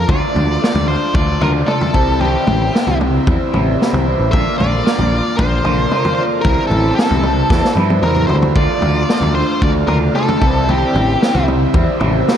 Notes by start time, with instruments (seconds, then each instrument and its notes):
Already playing: lead electric guitar A#4
0.07 picked electric bass D2, clean electric guitar D3 A3 D4 F4, transistor combo organ D4 F4 A4 D5, lead electric guitar D5, kick, floor tom
0.34 picked electric bass D2, clean electric guitar A3 D4 F4, floor tom
0.60 clean electric guitar D3 A3 D4 F4, snare
0.75 picked electric bass D2, floor tom
0.87 clean electric guitar A3 D4 F4, lead electric guitar C5
1.14 picked electric bass D2, clean electric guitar D3 A3 D4 F4, lead electric guitar D5, kick, floor tom
1.41 picked electric bass D2, clean electric guitar D3 A3 D4 F4, lead electric guitar A#4, floor tom, mid tom
1.67 clean electric guitar D3 A3 D4 F4, lead electric guitar A4, mid tom
1.81 floor tom
1.93 picked electric bass C2, clean electric guitar C3 E3 G3 C4 E4, transistor combo organ E4 G4 C5 E5, kick
2.19 clean electric guitar C3 E3 G3 C4 E4, lead electric guitar G4, floor tom
2.45 picked electric bass A1, clean electric guitar G3 C4 E4, floor tom
2.72 clean electric guitar C3 E3 G3 C4 E4, snare
2.87 picked electric bass C2, floor tom
2.99 clean electric guitar G3 C4 E4, mid tom
3.26 picked electric bass E2, clean electric guitar E3 G3 C4 E4, kick, floor tom
3.52 picked electric bass A1, clean electric guitar C3 E3 G3 C4 E4, floor tom, mid tom
3.79 clean electric guitar E3 G3 C4 E4, snare
3.93 picked electric bass C2, floor tom
4.05 clean electric guitar G3 C4 E4
4.19 picked electric bass A1
4.31 picked electric bass A#1, clean electric guitar A#2 D3 A#3 D4 F4, transistor combo organ F4 A#4 D5 F5, lead electric guitar E5, kick, floor tom
4.58 picked electric bass A#1, clean electric guitar A#3 D4 F4, lead electric guitar D5, floor tom
4.84 clean electric guitar A#2 D3 A#3 D4 F4, snare
4.99 picked electric bass A#1, floor tom
5.11 clean electric guitar A#3 D4 F4
5.37 picked electric bass A#1, clean electric guitar D3 A#3 D4 F4, lead electric guitar C5, kick, floor tom
5.64 picked electric bass A#1, clean electric guitar A#2 D3 A#3 D4 F4, floor tom, mid tom
5.91 clean electric guitar D3 A#3 D4 F4, mid tom
6.05 floor tom
6.15 clean electric guitar F4, lead electric guitar C5
6.20 clean electric guitar A#3 D4
6.42 picked electric bass C2, clean electric guitar C3 E3, transistor combo organ E4 G4 C5 E5, lead electric guitar A#4, kick, floor tom
6.46 clean electric guitar G3 C4 E4
6.67 picked electric bass A1, clean electric guitar E4, lead electric guitar A4, floor tom
6.72 clean electric guitar G3 C4
6.95 clean electric guitar C3 E3 G3 C4 E4, lead electric guitar A4, snare
7.10 picked electric bass C2, floor tom
7.23 clean electric guitar G3 C4 E4, mid tom
7.49 picked electric bass E2, clean electric guitar E3 G3 C4 E4, kick, snare
7.65 snare
7.75 picked electric bass G2, clean electric guitar C3 E3 G3 C4 E4, high tom
7.90 high tom
8.02 picked electric bass E2, clean electric guitar E3 G3 C4 E4, lead electric guitar A#4, mid tom
8.16 mid tom
8.27 picked electric bass D2, clean electric guitar C4 E4, lead electric guitar C5, floor tom
8.32 clean electric guitar G3
8.42 floor tom
8.54 picked electric bass D2, clean electric guitar D3 A3 D4 F4, transistor combo organ F4 A4 D5 F5, lead electric guitar D5, kick, floor tom
8.81 picked electric bass D2, clean electric guitar D4 F4, floor tom
8.85 clean electric guitar A3
9.09 clean electric guitar D3 A3 D4 F4, snare
9.21 picked electric bass D2, floor tom
9.35 clean electric guitar A3 D4 F4, lead electric guitar C5
9.61 picked electric bass D2, clean electric guitar D3 A3 D4 F4, lead electric guitar D5, kick, floor tom
9.87 picked electric bass D2, clean electric guitar D3 A3 D4 F4, lead electric guitar A#4, floor tom, mid tom
10.13 clean electric guitar D3 A3 D4 F4, lead electric guitar A4, mid tom
10.28 floor tom
10.40 picked electric bass C2, clean electric guitar C3 E3 G3 C4 E4, transistor combo organ E4 G4 C5 E5, kick
10.68 clean electric guitar C3 E3 G3 C4 E4, lead electric guitar G4, floor tom
10.93 picked electric bass A1, clean electric guitar G3 C4 E4, floor tom
11.21 clean electric guitar C3 E3 G3 C4 E4, snare
11.34 picked electric bass C2, floor tom
11.47 clean electric guitar G3 C4 E4, mid tom
11.74 picked electric bass E2, clean electric guitar E3 G3 C4 E4, kick, floor tom
12.00 picked electric bass A1, clean electric guitar C3 E3 G3 C4 E4, floor tom, mid tom
12.27 clean electric guitar E3 G3 C4 E4, snare